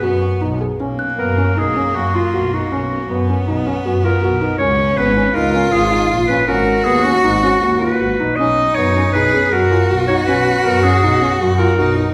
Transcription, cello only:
0, 0, Header, 1, 2, 480
1, 0, Start_track
1, 0, Tempo, 385356
1, 998, Time_signature, 5, 2, 24, 8
1, 3383, Tempo, 377596
1, 15362, End_track
2, 0, Start_track
2, 0, Title_t, "Cello"
2, 0, Program_c, 0, 42
2, 16, Note_on_c, 0, 59, 64
2, 703, Note_off_c, 0, 59, 0
2, 996, Note_on_c, 0, 58, 69
2, 3851, Note_on_c, 0, 59, 73
2, 3871, Note_off_c, 0, 58, 0
2, 5779, Note_on_c, 0, 61, 82
2, 5798, Note_off_c, 0, 59, 0
2, 6714, Note_off_c, 0, 61, 0
2, 6721, Note_on_c, 0, 65, 93
2, 8114, Note_off_c, 0, 65, 0
2, 8167, Note_on_c, 0, 66, 98
2, 10295, Note_off_c, 0, 66, 0
2, 10590, Note_on_c, 0, 63, 88
2, 11562, Note_on_c, 0, 68, 87
2, 11581, Note_off_c, 0, 63, 0
2, 12031, Note_on_c, 0, 66, 93
2, 12050, Note_off_c, 0, 68, 0
2, 14900, Note_off_c, 0, 66, 0
2, 14907, Note_on_c, 0, 63, 80
2, 15362, Note_off_c, 0, 63, 0
2, 15362, End_track
0, 0, End_of_file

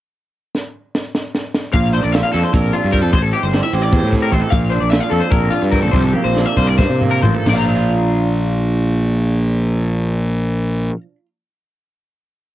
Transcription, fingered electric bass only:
0, 0, Header, 1, 2, 480
1, 0, Start_track
1, 0, Tempo, 397878
1, 415, Time_signature, 7, 3, 24, 8
1, 6175, Tempo, 412371
1, 7615, Tempo, 447094
1, 9055, Tempo, 465477
1, 14057, End_track
2, 0, Start_track
2, 0, Title_t, "Fingered electric bass"
2, 0, Program_c, 0, 33
2, 2098, Note_on_c, 0, 34, 84
2, 2420, Note_off_c, 0, 34, 0
2, 2467, Note_on_c, 0, 34, 72
2, 2678, Note_off_c, 0, 34, 0
2, 2826, Note_on_c, 0, 41, 74
2, 2930, Note_off_c, 0, 41, 0
2, 3064, Note_on_c, 0, 34, 98
2, 3276, Note_off_c, 0, 34, 0
2, 3429, Note_on_c, 0, 43, 71
2, 3667, Note_off_c, 0, 43, 0
2, 3667, Note_on_c, 0, 41, 75
2, 3770, Note_off_c, 0, 41, 0
2, 3783, Note_on_c, 0, 33, 96
2, 3995, Note_off_c, 0, 33, 0
2, 4142, Note_on_c, 0, 31, 77
2, 4354, Note_off_c, 0, 31, 0
2, 4502, Note_on_c, 0, 33, 80
2, 4713, Note_off_c, 0, 33, 0
2, 4742, Note_on_c, 0, 40, 90
2, 4846, Note_off_c, 0, 40, 0
2, 4863, Note_on_c, 0, 45, 63
2, 5181, Note_off_c, 0, 45, 0
2, 5221, Note_on_c, 0, 33, 84
2, 5325, Note_off_c, 0, 33, 0
2, 5459, Note_on_c, 0, 34, 80
2, 5778, Note_off_c, 0, 34, 0
2, 5814, Note_on_c, 0, 34, 78
2, 6028, Note_off_c, 0, 34, 0
2, 6173, Note_on_c, 0, 41, 74
2, 6278, Note_off_c, 0, 41, 0
2, 6409, Note_on_c, 0, 34, 99
2, 6620, Note_off_c, 0, 34, 0
2, 6765, Note_on_c, 0, 43, 64
2, 7003, Note_on_c, 0, 35, 78
2, 7021, Note_off_c, 0, 43, 0
2, 7111, Note_off_c, 0, 35, 0
2, 7128, Note_on_c, 0, 36, 101
2, 7344, Note_off_c, 0, 36, 0
2, 7490, Note_on_c, 0, 34, 78
2, 7705, Note_off_c, 0, 34, 0
2, 7845, Note_on_c, 0, 36, 80
2, 8054, Note_off_c, 0, 36, 0
2, 8078, Note_on_c, 0, 43, 88
2, 8184, Note_off_c, 0, 43, 0
2, 8199, Note_on_c, 0, 48, 66
2, 8522, Note_off_c, 0, 48, 0
2, 8561, Note_on_c, 0, 33, 87
2, 8670, Note_off_c, 0, 33, 0
2, 8803, Note_on_c, 0, 34, 83
2, 12352, Note_off_c, 0, 34, 0
2, 14057, End_track
0, 0, End_of_file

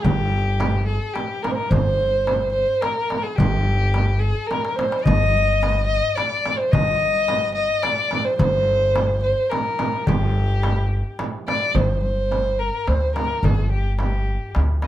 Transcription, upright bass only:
0, 0, Header, 1, 2, 480
1, 0, Start_track
1, 0, Tempo, 558659
1, 34, Time_signature, 3, 2, 24, 8
1, 12777, End_track
2, 0, Start_track
2, 0, Title_t, "Upright bass"
2, 0, Program_c, 0, 32
2, 38, Note_on_c, 0, 31, 94
2, 831, Note_off_c, 0, 31, 0
2, 1466, Note_on_c, 0, 31, 98
2, 2264, Note_off_c, 0, 31, 0
2, 2919, Note_on_c, 0, 31, 94
2, 3710, Note_off_c, 0, 31, 0
2, 4356, Note_on_c, 0, 31, 102
2, 5148, Note_off_c, 0, 31, 0
2, 5782, Note_on_c, 0, 31, 90
2, 6580, Note_off_c, 0, 31, 0
2, 7212, Note_on_c, 0, 31, 98
2, 8013, Note_off_c, 0, 31, 0
2, 8662, Note_on_c, 0, 31, 96
2, 9460, Note_off_c, 0, 31, 0
2, 10095, Note_on_c, 0, 31, 80
2, 10897, Note_off_c, 0, 31, 0
2, 11062, Note_on_c, 0, 38, 70
2, 11463, Note_off_c, 0, 38, 0
2, 11536, Note_on_c, 0, 31, 79
2, 12339, Note_off_c, 0, 31, 0
2, 12509, Note_on_c, 0, 38, 77
2, 12777, Note_off_c, 0, 38, 0
2, 12777, End_track
0, 0, End_of_file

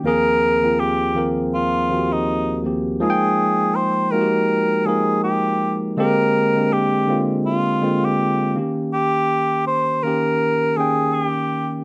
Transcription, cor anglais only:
0, 0, Header, 1, 2, 480
1, 0, Start_track
1, 0, Key_signature, -4, "minor"
1, 0, Tempo, 740741
1, 25, Time_signature, 4, 2, 24, 8
1, 7674, End_track
2, 0, Start_track
2, 0, Title_t, "Cor anglais"
2, 0, Program_c, 0, 69
2, 42, Note_on_c, 0, 70, 118
2, 515, Note_on_c, 0, 67, 96
2, 525, Note_off_c, 0, 70, 0
2, 825, Note_off_c, 0, 67, 0
2, 1000, Note_on_c, 0, 65, 100
2, 1379, Note_on_c, 0, 63, 83
2, 1389, Note_off_c, 0, 65, 0
2, 1713, Note_off_c, 0, 63, 0
2, 1955, Note_on_c, 0, 68, 107
2, 2433, Note_on_c, 0, 72, 110
2, 2443, Note_off_c, 0, 68, 0
2, 2665, Note_on_c, 0, 70, 95
2, 2675, Note_off_c, 0, 72, 0
2, 3152, Note_on_c, 0, 68, 103
2, 3162, Note_off_c, 0, 70, 0
2, 3389, Note_off_c, 0, 68, 0
2, 3394, Note_on_c, 0, 67, 88
2, 3742, Note_off_c, 0, 67, 0
2, 3873, Note_on_c, 0, 70, 107
2, 4360, Note_on_c, 0, 67, 93
2, 4370, Note_off_c, 0, 70, 0
2, 4667, Note_off_c, 0, 67, 0
2, 4834, Note_on_c, 0, 65, 96
2, 5215, Note_on_c, 0, 67, 92
2, 5224, Note_off_c, 0, 65, 0
2, 5551, Note_off_c, 0, 67, 0
2, 5788, Note_on_c, 0, 67, 114
2, 6240, Note_off_c, 0, 67, 0
2, 6267, Note_on_c, 0, 72, 105
2, 6500, Note_on_c, 0, 70, 106
2, 6510, Note_off_c, 0, 72, 0
2, 6979, Note_on_c, 0, 68, 104
2, 6989, Note_off_c, 0, 70, 0
2, 7215, Note_off_c, 0, 68, 0
2, 7215, Note_on_c, 0, 68, 88
2, 7287, Note_off_c, 0, 68, 0
2, 7287, Note_on_c, 0, 67, 88
2, 7598, Note_off_c, 0, 67, 0
2, 7674, End_track
0, 0, End_of_file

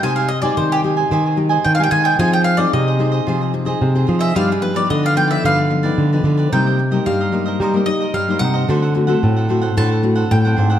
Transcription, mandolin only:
0, 0, Header, 1, 2, 480
1, 0, Start_track
1, 0, Key_signature, -3, "minor"
1, 0, Tempo, 541028
1, 28, Time_signature, 4, 2, 24, 8
1, 9576, End_track
2, 0, Start_track
2, 0, Title_t, "Mandolin"
2, 0, Program_c, 0, 25
2, 29, Note_on_c, 0, 80, 90
2, 136, Note_off_c, 0, 80, 0
2, 140, Note_on_c, 0, 77, 68
2, 252, Note_on_c, 0, 75, 85
2, 261, Note_off_c, 0, 77, 0
2, 366, Note_off_c, 0, 75, 0
2, 369, Note_on_c, 0, 74, 74
2, 495, Note_off_c, 0, 74, 0
2, 507, Note_on_c, 0, 72, 66
2, 624, Note_off_c, 0, 72, 0
2, 640, Note_on_c, 0, 67, 74
2, 709, Note_off_c, 0, 67, 0
2, 1460, Note_on_c, 0, 79, 74
2, 1541, Note_off_c, 0, 79, 0
2, 1550, Note_on_c, 0, 77, 77
2, 1624, Note_off_c, 0, 77, 0
2, 1628, Note_on_c, 0, 79, 83
2, 1691, Note_off_c, 0, 79, 0
2, 1695, Note_on_c, 0, 80, 103
2, 1815, Note_off_c, 0, 80, 0
2, 1818, Note_on_c, 0, 79, 72
2, 1940, Note_off_c, 0, 79, 0
2, 1947, Note_on_c, 0, 80, 89
2, 2064, Note_off_c, 0, 80, 0
2, 2070, Note_on_c, 0, 79, 83
2, 2164, Note_off_c, 0, 79, 0
2, 2168, Note_on_c, 0, 77, 85
2, 2282, Note_on_c, 0, 74, 77
2, 2294, Note_off_c, 0, 77, 0
2, 2411, Note_off_c, 0, 74, 0
2, 2425, Note_on_c, 0, 75, 72
2, 3351, Note_off_c, 0, 75, 0
2, 3731, Note_on_c, 0, 76, 81
2, 3855, Note_off_c, 0, 76, 0
2, 3869, Note_on_c, 0, 77, 88
2, 3985, Note_off_c, 0, 77, 0
2, 4011, Note_on_c, 0, 68, 49
2, 4099, Note_on_c, 0, 71, 76
2, 4116, Note_off_c, 0, 68, 0
2, 4220, Note_off_c, 0, 71, 0
2, 4224, Note_on_c, 0, 74, 76
2, 4342, Note_off_c, 0, 74, 0
2, 4349, Note_on_c, 0, 75, 76
2, 4465, Note_off_c, 0, 75, 0
2, 4487, Note_on_c, 0, 77, 91
2, 4582, Note_off_c, 0, 77, 0
2, 4586, Note_on_c, 0, 79, 90
2, 4703, Note_off_c, 0, 79, 0
2, 4708, Note_on_c, 0, 76, 77
2, 4824, Note_off_c, 0, 76, 0
2, 4839, Note_on_c, 0, 77, 82
2, 5280, Note_off_c, 0, 77, 0
2, 5790, Note_on_c, 0, 79, 78
2, 6235, Note_off_c, 0, 79, 0
2, 6264, Note_on_c, 0, 77, 78
2, 6950, Note_off_c, 0, 77, 0
2, 6973, Note_on_c, 0, 75, 87
2, 7212, Note_off_c, 0, 75, 0
2, 7222, Note_on_c, 0, 77, 70
2, 7443, Note_off_c, 0, 77, 0
2, 7446, Note_on_c, 0, 78, 97
2, 8141, Note_off_c, 0, 78, 0
2, 8673, Note_on_c, 0, 81, 94
2, 9116, Note_off_c, 0, 81, 0
2, 9149, Note_on_c, 0, 79, 83
2, 9576, Note_off_c, 0, 79, 0
2, 9576, End_track
0, 0, End_of_file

